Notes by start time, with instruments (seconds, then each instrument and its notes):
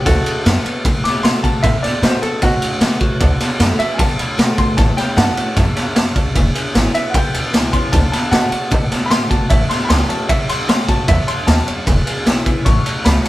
0.06 upright bass D2, steel-string acoustic guitar D3, upright piano F#4 A4, kick, snare, ride
0.26 muted upright bass stroke, ride
0.45 upright bass F#2, steel-string acoustic guitar D3 A3 B3 F#4, snare, ride
0.65 steel-string acoustic guitar B3 F#4, muted upright bass stroke, ride
0.85 steel-string acoustic guitar A2, upright bass A2, kick, ride
1.04 upright bass B2, upright piano D6, snare, ride
1.23 upright bass B2, steel-string acoustic guitar D3 A3 B3 F#4, upright piano C6, snare, ride
1.43 upright bass B2, steel-string acoustic guitar B3 F#4, upright piano A5, kick, ride
1.63 upright bass A2, steel-string acoustic guitar D3, upright piano E5, kick, snare, ride
1.83 upright piano D5, muted upright bass stroke, snare, ride
2.02 upright bass B2, steel-string acoustic guitar D3 A3 B3 F#4, upright piano C5, snare, ride
2.22 steel-string acoustic guitar B3 F#4, upright piano A4, muted upright bass stroke, ride
2.42 steel-string acoustic guitar A2, upright bass B2, upright piano F#4, kick, snare, ride
2.62 muted upright bass stroke, ride
2.80 upright bass A2, steel-string acoustic guitar D3 A3 B3 F#4, snare, ride
3.00 upright bass F#2, steel-string acoustic guitar B3 F#4, kick, ride
3.20 upright bass D2, steel-string acoustic guitar D3, honky-tonk piano D5 F#5 A5, kick, ride
3.40 honky-tonk piano D5 F#5 A5, muted upright bass stroke, snare, ride
3.59 upright bass F#2, steel-string acoustic guitar D3 A3 B3 F#4, honky-tonk piano D5 F#5 B5, snare, ride
3.79 steel-string acoustic guitar F#4, honky-tonk piano D5 F#5 A5, upright piano E5, muted upright bass stroke, ride
3.94 upright piano G#5
3.98 upright bass A2, steel-string acoustic guitar A2, honky-tonk piano D5 F#5 A5, upright piano A5, kick, snare, ride
4.18 upright bass B2, honky-tonk piano D5 F#5 B5, ride
4.38 upright bass B2, steel-string acoustic guitar D3 A3 B3 F#4, honky-tonk piano D5 F#5 B5, snare, ride
4.57 upright bass G#1, honky-tonk piano D5 F#5 A5, upright piano C6, kick, ride
4.77 upright bass A1, steel-string acoustic guitar A2, honky-tonk piano C#5 E5 A5, upright piano A5, kick, snare, ride
4.97 honky-tonk piano C#5 E5 B5, upright piano G5, muted upright bass stroke, snare, ride
5.16 upright bass G2, steel-string acoustic guitar E3 A3 C#4 F#4, honky-tonk piano C#5 E5 A5, upright piano F#5 A5, snare, ride
5.36 steel-string acoustic guitar C#4 F#4, honky-tonk piano C#5 E5 A5, muted upright bass stroke, ride
5.56 upright bass F#2, steel-string acoustic guitar G2, honky-tonk piano C#5 E5 A5, kick, snare, ride
5.76 honky-tonk piano C#5 E5 A5, muted upright bass stroke, snare, ride
5.95 upright bass E2, steel-string acoustic guitar F#2, honky-tonk piano C#5 E5 A5, snare, ride
6.15 upright bass C#2, honky-tonk piano C#5 E5 A5, kick, ride
6.34 upright bass E1, steel-string acoustic guitar E2, honky-tonk piano B4 E5 G#5, kick, ride
6.54 honky-tonk piano B4 E5 G#5, ride
6.74 upright bass G#1, steel-string acoustic guitar E3 G#3 C#4 E4, honky-tonk piano B4 E5 G#5, snare, ride
6.93 steel-string acoustic guitar C#4, honky-tonk piano B4 E5 G#5, upright piano E5, muted upright bass stroke, ride
7.10 honky-tonk piano B4 E5, upright piano F#5
7.14 upright bass B1, steel-string acoustic guitar B2, honky-tonk piano F#5, upright piano G5, kick, ride
7.32 upright bass D2, honky-tonk piano B4 E5 G#5, ride
7.52 upright bass C#2, steel-string acoustic guitar E3 G#3 C#4 E4, honky-tonk piano B4 E5 G#5, snare, ride
7.72 upright bass E2, steel-string acoustic guitar C#4 E4, honky-tonk piano B4 E5 G#5, upright piano C6, kick, ride
7.92 upright bass D2, steel-string acoustic guitar D3, honky-tonk piano D5 F#5 A5, upright piano A5, kick, snare, ride
8.12 honky-tonk piano D5 F#5 B5, upright piano A5, muted upright bass stroke, snare, ride
8.31 upright bass B2, steel-string acoustic guitar D3 A3 B3 F#4, honky-tonk piano D5 F#5 A5, upright piano F#5 A5, snare, ride
8.51 steel-string acoustic guitar B3 F#4, honky-tonk piano D5 F#5 A5, muted upright bass stroke, ride
8.71 steel-string acoustic guitar A2, upright bass B2, honky-tonk piano D5 F#5 A5, kick, ride
8.90 honky-tonk piano D5 F#5 A5, muted upright bass stroke, snare, ride
9.06 upright piano B5
9.10 upright bass A2, steel-string acoustic guitar D3 A3 B3 F#4, honky-tonk piano F#5 A5, upright piano C6, snare, ride
9.29 upright bass G1, steel-string acoustic guitar B3 F#4, honky-tonk piano D5 F#5 A5, upright piano A5, kick, ride
9.50 upright bass A1, steel-string acoustic guitar A2, honky-tonk piano C#5 E5 A5, upright piano E5, kick, ride
9.69 honky-tonk piano C#5 E5 A5, upright piano C6, snare, ride
9.85 steel-string acoustic guitar E3, upright piano B5
9.89 upright bass C#2, steel-string acoustic guitar A3 C#4 F#4, honky-tonk piano C#5 E5 A5, upright piano C6, snare, ride
10.09 steel-string acoustic guitar C#4 F#4, honky-tonk piano C#5 E5 A5, upright piano A5, ride
10.28 upright bass E2, steel-string acoustic guitar E2, honky-tonk piano C#5 E5 F#5, upright piano E5, kick, ride
10.49 upright bass G2, honky-tonk piano C#5 E5 F#5, upright piano C6, ride
10.68 upright bass F#2, steel-string acoustic guitar E3 A3 C#4 F#4, honky-tonk piano C#5 E5 F#5, upright piano C6, snare, ride
10.88 upright bass G2, steel-string acoustic guitar C#4 F#4, honky-tonk piano C#5 E5 A5, upright piano A5, kick, ride
11.07 upright bass E2, steel-string acoustic guitar G2, honky-tonk piano C#5 E5 A5, upright piano E5, kick, ride
11.27 honky-tonk piano C#5 E5 A5, upright piano C6, muted upright bass stroke, ride
11.47 upright bass D#2, steel-string acoustic guitar F#2, honky-tonk piano C#5 E5 A5, upright piano A5, snare, ride
11.66 honky-tonk piano C#5 E5 F#5, muted upright bass stroke, ride
11.86 upright bass E1, steel-string acoustic guitar E2, honky-tonk piano B4 E5 G#5, kick, ride
12.06 honky-tonk piano B4 E5 G#5, ride
12.26 upright bass B1, steel-string acoustic guitar E3 G#3 C#4 E4, honky-tonk piano B4 E5 G#5, snare, ride
12.45 upright bass B1, steel-string acoustic guitar C#4 E4, honky-tonk piano B4 E5 G#5, kick, ride
12.65 upright bass A1, steel-string acoustic guitar A2, honky-tonk piano C#5 E5 A5, upright piano C#6, kick, ride
12.85 honky-tonk piano C#5 E5 A5, ride
13.04 upright bass C#2, steel-string acoustic guitar E3 A3 C#4 F#4, honky-tonk piano C#5 E5 A5, upright piano B5, snare, ride
13.24 steel-string acoustic guitar F#4, honky-tonk piano C#5 E5, upright piano A5, muted upright bass stroke, ride